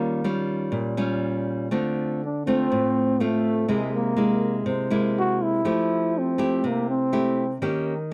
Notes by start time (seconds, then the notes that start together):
Already playing: D#3 G3 A#3 C#4 F4
0.24 G3 C#4 F4
0.72 A#2
0.97 G3 C#4 F4
1.71 D3 A3 C4 F4
2.25 D4
2.47 A3 C4 F4
2.72 A2
3.20 A3 C4 F4
3.68 C3 G#3 A#3 E4
3.73 G#3
3.96 A#3
4.17 G#3 A#3 E4
4.66 C3
4.90 G#3 A#3 E4
5.19 F#4
5.43 E4
5.65 F3 A3 E4 G4
6.19 C4
6.38 A3 E4 G4
6.64 C3
6.68 A#3
6.90 C4
7.13 A3 E4 G4
7.62 D#3 A#3 C#4 G4